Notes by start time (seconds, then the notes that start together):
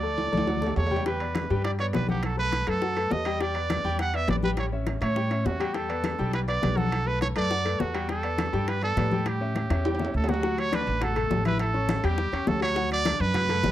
Already playing: D2 D5
0.03 A3 A4 D5, high conga
0.18 high conga, high timbale
0.32 D2 A3 A4 D5, high conga
0.38 high timbale
0.47 F#3 F#4 F#5, high conga, high timbale
0.61 A3 A4 D5, high conga
0.67 low timbale
0.76 E2 C#5, low timbale
0.87 low timbale
0.91 G3 G4 G5, low conga
0.96 low timbale
1.06 G3 G4 B4 G5, high bongo, high conga, high timbale
1.20 B3 B4 D5, high conga, high timbale
1.35 high bongo, high conga, high timbale, low timbale
1.50 G2 G3 G4 G5, high bongo
1.64 D5, high bongo, high conga, high timbale
1.79 B3 B4 C#5 D5, high bongo, high conga, high timbale
1.93 B1 B3 B4 D5, high bongo, low bongo, high conga, high timbale, low timbale
2.09 F#3 F#4 G4 F#5, high bongo, high conga
2.23 A4, high bongo, high conga, high timbale
2.37 A3 A4 B4, high conga
2.52 high bongo, high conga, high timbale, low timbale
2.67 F#2 A3 A4 B4, high bongo, high timbale
2.81 F#3 F#4 F#5, high bongo, high conga
2.96 A3 A4 B4, high bongo, high conga, high timbale
3.11 E2 D#5, high bongo, low bongo, high conga, low timbale
3.25 G3 G4 G5, high bongo, high conga, high timbale
3.40 G3 G4 D5 G5, high bongo, high conga, high timbale
3.55 B3 B4 D5, high conga, high timbale
3.70 high bongo, high conga, high timbale, low timbale
3.84 E2 G3 G4 G5, high bongo
3.99 F#5, high bongo, high conga, high timbale
4.14 B3 B4 D5 E5, high bongo, high conga, high timbale
4.28 A1 B3 B4 D5, high bongo, low bongo, high conga, high timbale, low timbale
4.43 G3 G4 B4 G5, high bongo, high conga
4.57 C#5, high bongo, high conga, high timbale
4.72 C#4 C#5 E5, high conga
4.87 high bongo, high conga, high timbale, low timbale
5.01 A2 C#4 C#5 E5, high bongo, high timbale
5.16 G3 G4 G5, high bongo, high conga
5.31 C#4 C#5 E5, high bongo, high conga, high timbale
5.45 E2 F#4, high bongo, low bongo, high conga, low timbale
5.60 G3 G4 G5, high bongo, high conga, high timbale
5.74 G3 G4 A4 G5, high bongo, high conga, high timbale
5.89 B3 B4 D5, high conga, high timbale
6.04 high bongo, high conga, high timbale, low timbale
6.19 B1 G3 G4 G5, high bongo
6.33 B4, high bongo, high conga, high timbale
6.48 B3 B4 D5, high bongo, high conga, high timbale
6.61 B1 B3 B4 D5, high bongo, low bongo, high conga, high timbale, low timbale
6.76 F#3 F#4 A4 F#5, high bongo, high conga
6.92 high bongo, high conga, high timbale
7.06 A3 A4 B4, high conga
7.21 C#5, high bongo, high conga, high timbale, low timbale
7.36 F#2 A3 A4 B4 D5, high bongo, high timbale
7.50 F#3 F#4 F#5, high bongo, high conga
7.65 A3 A4 B4, high bongo, high conga, high timbale
7.80 E2 F#4, high bongo, low bongo, high conga, low timbale
7.94 G3 G4 G5, high bongo, high conga, high timbale
8.08 G3 G4 A4 G5, high bongo, high conga, high timbale
8.23 B3 B4 D5, high conga, high timbale
8.38 high bongo, high conga, high timbale, low timbale
8.53 G2 G3 G4 G5, high bongo
8.67 B4, high bongo, high conga, high timbale
8.82 B3 A4 B4 D5, high bongo, high conga, high timbale
8.97 A2 B3 B4 D5, high bongo, low bongo, high conga, high timbale, low timbale
9.11 G3 G4 G5, high bongo, high conga
9.26 G4, high bongo, high conga, high timbale
9.41 C#4 C#5 E5, high conga
9.55 high bongo, high conga, high timbale, low timbale
9.70 E2 C#4 C#5 E5, high bongo, high timbale
9.85 G3 G4 G5, high conga, high timbale
9.95 high timbale
9.99 C#4 C#5 E5, low bongo, high conga
10.05 low timbale
10.14 D2 A4, high conga
10.24 low timbale
10.29 F#3 F#4 F#5, low bongo, high conga
10.34 low timbale
10.43 F#3 F#4 F#5, high bongo, high conga
10.58 C#5, high bongo, high conga, high timbale
10.72 D4 B4 D5 D6, high bongo, high conga, high timbale, low timbale
10.87 A1, high conga
11.00 F#4 A4 F#5 F#6, high bongo, high conga, low conga, high timbale
11.16 A3 A4 A5, high bongo, high conga, low conga, high timbale
11.31 A1, high bongo, low bongo, high conga, low timbale
11.45 E4 B4 E5 E6, high bongo, high conga, high timbale
11.59 A4, high bongo, high conga, high timbale
11.74 C#4 C#5 C#6, high bongo, high conga
11.89 high bongo, high conga, high timbale, low timbale
12.04 E2 G3 G4 G5, high timbale
12.18 high bongo, high conga
12.32 E2 C#4 C#5 C#6, high bongo, high conga, high timbale
12.47 D2 A4, high bongo, low bongo, high conga, low timbale
12.61 F#3 F#4 C#5 F#5, high bongo, high conga, high timbale
12.76 F#3 F#4 F#5, high bongo, high conga
12.91 D5, high bongo, high conga, high timbale
13.05 D4 D5 D6, high bongo, high conga, high timbale, low timbale
13.20 F#2 B4, high conga
13.34 F#4 F#5 F#6, high bongo, high conga, low conga, high timbale
13.49 A3 A4 A5, high bongo, high conga, low conga, high timbale
13.63 A1, high bongo, low bongo, high conga, low timbale